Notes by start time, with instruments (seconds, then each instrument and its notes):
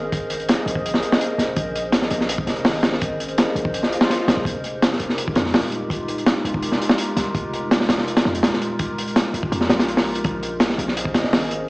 Already playing: 808-style bass G#1
0.12 kick, closed hi-hat
0.30 closed hi-hat
0.39 ambient pad C#4 G#4 A#4 C5 D#5, closed hi-hat
0.49 snare, closed hi-hat
0.66 808-style bass A#1, closed hi-hat
0.75 kick
0.86 closed hi-hat
0.94 snare
1.02 closed hi-hat
1.12 snare
1.21 closed hi-hat
1.38 808-style bass F1, snare, closed hi-hat
1.56 808-style bass A#1, kick, closed hi-hat
1.76 closed hi-hat
1.84 ambient pad C#4 G#4 A#4 C5 D#5
1.92 snare, closed hi-hat
2.02 snare
2.10 808-style bass A#1, closed hi-hat
2.20 snare
2.29 closed hi-hat
2.38 kick
2.47 808-style bass F1, snare, closed hi-hat
2.56 closed hi-hat
2.65 808-style bass G#1, snare, open hi-hat
2.83 snare, closed hi-hat
2.92 snare
3.01 kick, closed hi-hat
3.20 closed hi-hat
3.28 ambient pad C#4 G#4 A#4 C5 D#5, closed hi-hat
3.38 snare, closed hi-hat
3.55 808-style bass A#1, closed hi-hat
3.65 kick
3.74 closed hi-hat, swell
3.83 snare
3.92 closed hi-hat
4.01 snare
4.10 snare, closed hi-hat
4.28 808-style bass A#1, snare, closed hi-hat
4.37 808-style bass F1
4.45 808-style bass F1, kick, closed hi-hat
4.64 closed hi-hat
4.73 ambient pad G#3 D#4 F4 G4 A#4
4.82 snare, closed hi-hat
4.93 snare
5.00 808-style bass F1, closed hi-hat
5.09 snare
5.18 closed hi-hat
5.28 kick
5.35 808-style bass F2, snare, closed hi-hat
5.46 snare
5.54 808-style bass D#1, snare, open hi-hat
5.72 closed hi-hat
5.90 kick, closed hi-hat
6.08 closed hi-hat
6.17 ambient pad G#3 D#4 F4 G4 A#4, closed hi-hat
6.26 snare, closed hi-hat
6.45 808-style bass F1, closed hi-hat
6.54 kick
6.63 closed hi-hat
6.72 snare
6.82 closed hi-hat
6.89 snare
6.98 closed hi-hat
7.16 808-style bass C2, snare, closed hi-hat
7.35 808-style bass F1, kick, closed hi-hat
7.53 closed hi-hat
7.62 ambient pad G#3 D#4 F4 G4 A#4
7.71 snare, closed hi-hat
7.80 snare
7.89 808-style bass F1, snare, closed hi-hat
7.98 snare
8.08 closed hi-hat
8.17 snare, closed hi-hat
8.25 808-style bass F2, snare
8.35 closed hi-hat
8.43 808-style bass D#1, snare, closed hi-hat
8.53 snare
8.62 closed hi-hat
8.79 kick, closed hi-hat
8.98 closed hi-hat
9.07 ambient pad G#3 D#4 F4 G4 A#4, closed hi-hat
9.16 snare, closed hi-hat
9.34 808-style bass F1, closed hi-hat
9.43 kick
9.52 808-style bass F2, closed hi-hat
9.61 snare
9.69 808-style bass A#1, snare, closed hi-hat
9.79 snare, closed hi-hat
9.88 closed hi-hat
9.97 snare, open hi-hat
10.15 closed hi-hat
10.24 808-style bass A#1, kick, closed hi-hat
10.43 closed hi-hat
10.51 ambient pad C#4 G#4 A#4 C5 D#5
10.60 snare, closed hi-hat
10.70 snare
10.78 808-style bass A#1, closed hi-hat
10.88 snare
10.97 closed hi-hat
11.05 kick
11.14 808-style bass F1, snare, closed hi-hat
11.24 snare
11.33 808-style bass G#1, snare, open hi-hat
11.51 closed hi-hat